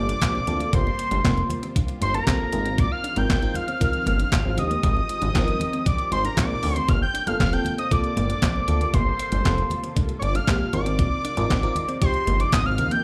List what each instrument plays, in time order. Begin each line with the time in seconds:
Already playing: analog synth bass G1, string machine C3 G3 A#3 C4 F4, analog synth lead D6
0.09 clean electric guitar D4, closed hi-hat
0.21 analog synth bass A#1, kick, snare, clap, closed hi-hat, muted conga, high conga
0.34 clean electric guitar C4, muted conga, high conga
0.47 analog synth bass D2, fm electric piano A#3 C4 F4 A4, closed hi-hat, low conga
0.60 clean electric guitar A#3, closed hi-hat
0.73 analog synth bass G1, clean electric guitar A#3, analog synth lead C6, kick, closed hi-hat
0.87 muted conga
0.99 muted clean electric guitar stroke, closed hi-hat
1.11 analog synth bass G1, clean electric guitar D4, closed hi-hat, high conga
1.24 analog synth bass F1, fm electric piano A#3 C4 F4 A#4, clean electric guitar C4, kick, snare, clap, closed hi-hat, muted conga
1.37 closed hi-hat, muted conga
1.50 muted clean electric guitar stroke, closed hi-hat, high conga, low conga
1.63 clean electric guitar C4, closed hi-hat
1.75 clean electric guitar D4, kick, closed hi-hat, muted conga, high conga
1.88 muted clean electric guitar stroke, closed hi-hat, muted conga
2.01 analog synth bass G1, analog synth lead C6, closed hi-hat, high conga
2.14 clean electric guitar D4, fm electric piano F4 A#4, analog synth lead A#5, closed hi-hat
2.26 analog synth bass A#1, fm electric piano A#3 C4 F4 A4, clean electric guitar C4, kick, snare, clap, closed hi-hat, muted conga, high conga
2.40 high conga
2.52 analog synth bass G#1, string machine D#3 F3 G#3 C4, fm electric piano C4 D#4 F4 A#4, muted clean electric guitar stroke, closed hi-hat, low conga
2.65 clean electric guitar C4, closed hi-hat
2.78 clean electric guitar A#3, analog synth lead D6, kick, closed hi-hat
2.92 analog synth lead F6
3.04 clean electric guitar D4, closed hi-hat
3.16 analog synth bass G#1, fm electric piano C4 D#4 F4 A#4, analog synth lead G6, muted clean electric guitar stroke, closed hi-hat, high conga
3.29 analog synth bass G#1, clean electric guitar C4, kick, snare, clap, closed hi-hat
3.42 fm electric piano C4 D#4 F4 A#4, muted clean electric guitar stroke, closed hi-hat, muted conga
3.54 analog synth lead F6, closed hi-hat, high conga, low conga
3.68 clean electric guitar C4, closed hi-hat
3.81 fm electric piano C4 D#4 F4 A#4, muted clean electric guitar stroke, kick, closed hi-hat, muted conga, high conga
3.93 closed hi-hat
4.06 analog synth bass G1, clean electric guitar A#3, closed hi-hat, high conga
4.19 clean electric guitar D4, closed hi-hat
4.32 analog synth bass G#1, kick, snare, clap, closed hi-hat, muted conga, high conga
4.45 clean electric guitar C4, high conga
4.57 analog synth bass D#2, fm electric piano C4 D#4 F4 G4, string machine G4, analog synth lead D#6, muted clean electric guitar stroke, closed hi-hat, low conga
4.71 clean electric guitar A#3, closed hi-hat
4.83 analog synth bass G#1, clean electric guitar G#3, kick, closed hi-hat
4.97 muted conga
5.09 muted clean electric guitar stroke, closed hi-hat
5.22 analog synth bass G#1, clean electric guitar D4, closed hi-hat, high conga
5.34 analog synth bass G1, fm electric piano C4 D#4 F4 A#4, clean electric guitar C4, kick, snare, clap, closed hi-hat
5.48 closed hi-hat, muted conga
5.60 muted clean electric guitar stroke, closed hi-hat, high conga, low conga
5.73 clean electric guitar C4, closed hi-hat
5.86 clean electric guitar D4, analog synth lead D6, kick, closed hi-hat, muted conga, high conga
5.98 muted clean electric guitar stroke, closed hi-hat, muted conga
6.12 analog synth bass G#1, analog synth lead C6, closed hi-hat, high conga
6.24 clean electric guitar D4, fm electric piano F4 A#4, analog synth lead A#5, closed hi-hat
6.37 analog synth bass A#1, fm electric piano C4 D#4 F4 A#4, clean electric guitar C4, analog synth lead D6, kick, snare, clap, closed hi-hat, muted conga, high conga
6.50 high conga
6.63 analog synth bass D2, muted clean electric guitar stroke, open hi-hat, low conga
6.75 clean electric guitar C4, analog synth lead C6, closed hi-hat
6.88 analog synth bass G1, string machine C3 G3 A#3 F4 A4, clean electric guitar A#3, analog synth lead F6, kick, closed hi-hat, muted conga
7.02 analog synth lead G6
7.14 clean electric guitar D4, closed hi-hat
7.27 analog synth bass G1, fm electric piano A#3 C4 F4 A4, analog synth lead F6, muted clean electric guitar stroke, closed hi-hat, high conga
7.40 analog synth bass F1, clean electric guitar C4, analog synth lead F6, kick, snare, clap, closed hi-hat, muted conga
7.52 fm electric piano A#3 C4 F4 A4, analog synth lead G6, muted clean electric guitar stroke, closed hi-hat
7.65 closed hi-hat, high conga, low conga
7.78 clean electric guitar C4, analog synth lead D#6, closed hi-hat
7.91 fm electric piano A#3 C4 F4 A4, analog synth lead D6, muted clean electric guitar stroke, kick, closed hi-hat, muted conga, high conga
8.04 closed hi-hat
8.17 analog synth bass G1, clean electric guitar A#3, closed hi-hat, high conga
8.30 clean electric guitar D4, closed hi-hat
8.42 analog synth bass A#1, kick, snare, clap, closed hi-hat, muted conga, high conga
8.55 clean electric guitar C4, muted conga, high conga
8.68 analog synth bass D2, fm electric piano A#3 C4 F4 A4, muted clean electric guitar stroke, closed hi-hat, low conga
8.81 clean electric guitar A#3, closed hi-hat
8.94 analog synth bass G1, clean electric guitar A#3, analog synth lead C6, kick, closed hi-hat
9.19 muted clean electric guitar stroke, closed hi-hat
9.32 analog synth bass G1, clean electric guitar D4, closed hi-hat, high conga
9.45 analog synth bass F1, fm electric piano A#3 C4 F4 A4, clean electric guitar C4, kick, snare, clap, closed hi-hat
9.58 closed hi-hat
9.70 muted clean electric guitar stroke, closed hi-hat, high conga, low conga
9.83 clean electric guitar C4, closed hi-hat
9.96 clean electric guitar D4, kick, closed hi-hat, muted conga, high conga
10.09 muted clean electric guitar stroke, closed hi-hat
10.19 analog synth bass G1, analog synth lead C#6 D6, closed hi-hat, high conga
10.34 clean electric guitar D4, fm electric piano F4 A4, analog synth lead F6, closed hi-hat
10.47 analog synth bass A#1, fm electric piano A#3 C4 F4 G4, clean electric guitar C4, kick, snare, clap, closed hi-hat, muted conga, high conga
10.61 high conga
10.73 analog synth bass G#1, string machine F3 G#3 D#4, fm electric piano C4 D#4 F4 A#4, analog synth lead D6, muted clean electric guitar stroke, closed hi-hat, low conga
10.86 clean electric guitar C4, closed hi-hat
10.99 clean electric guitar A#3, kick, closed hi-hat, muted conga
11.24 clean electric guitar D4, closed hi-hat
11.37 analog synth bass G#1, fm electric piano C4 D#4 F4 A#4, closed hi-hat, high conga
11.50 analog synth bass G#1, clean electric guitar C4, kick, snare, clap, closed hi-hat, muted conga
11.63 fm electric piano C4 D#4 F4 A#4, closed hi-hat, muted conga
11.75 closed hi-hat, high conga, low conga
11.88 clean electric guitar C4, closed hi-hat
12.01 fm electric piano C4 D#4 F4 G4, analog synth lead C6, kick, closed hi-hat, muted conga, high conga
12.14 analog synth lead C6, closed hi-hat
12.27 analog synth bass G1, clean electric guitar A#3, closed hi-hat, high conga
12.40 clean electric guitar D4, analog synth lead D6, closed hi-hat
12.52 analog synth bass G#1, analog synth lead D#6, kick, snare, clap, closed hi-hat, muted conga, high conga
12.65 clean electric guitar C4, analog synth lead F6, muted conga, high conga
12.78 analog synth bass D#2, fm electric piano C4 D#4 F4 A#4, string machine G4, muted clean electric guitar stroke, closed hi-hat, low conga
12.91 clean electric guitar A#3, analog synth lead G6, closed hi-hat